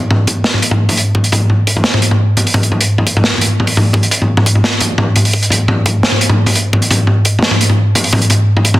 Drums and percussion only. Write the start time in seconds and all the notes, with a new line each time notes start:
0.11 mid tom
0.27 kick, closed hi-hat, mid tom
0.44 snare
0.54 mid tom
0.62 closed hi-hat
0.71 mid tom
0.89 mid tom, open hi-hat
0.97 closed hi-hat
1.15 kick, mid tom
1.24 closed hi-hat
1.32 kick, closed hi-hat, mid tom
1.50 mid tom
1.67 kick, closed hi-hat
1.76 mid tom
1.84 snare
1.94 mid tom
2.02 closed hi-hat
2.11 mid tom
2.37 closed hi-hat, mid tom
2.47 open hi-hat
2.54 kick, mid tom
2.63 closed hi-hat
2.72 mid tom
2.81 closed hi-hat
2.98 mid tom
3.07 kick, closed hi-hat
3.17 mid tom
3.24 snare
3.33 mid tom
3.38 closed hi-hat, mid tom
3.42 mid tom
3.46 mid tom
3.60 mid tom
3.67 open hi-hat
3.77 mid tom
3.93 kick, mid tom
4.03 closed hi-hat
4.11 kick, closed hi-hat
4.22 mid tom
4.37 mid tom
4.46 kick, closed hi-hat
4.55 mid tom
4.64 snare
4.80 closed hi-hat, mid tom
4.98 mid tom
5.16 closed hi-hat, mid tom
5.25 open hi-hat
5.34 kick
5.42 closed hi-hat
5.50 closed hi-hat, mid tom
5.68 mid tom
5.86 kick, closed hi-hat, mid tom
6.03 snare
6.12 mid tom
6.21 closed hi-hat
6.29 mid tom
6.46 mid tom, open hi-hat
6.55 closed hi-hat
6.73 kick, mid tom
6.82 closed hi-hat
6.91 kick, closed hi-hat, mid tom
7.07 mid tom
7.25 kick, closed hi-hat
7.39 snare, mid tom
7.51 mid tom
7.61 closed hi-hat
7.70 mid tom
7.95 closed hi-hat, mid tom
8.04 open hi-hat
8.13 kick, mid tom
8.21 closed hi-hat
8.30 closed hi-hat, mid tom
8.57 mid tom
8.65 kick, closed hi-hat
8.74 mid tom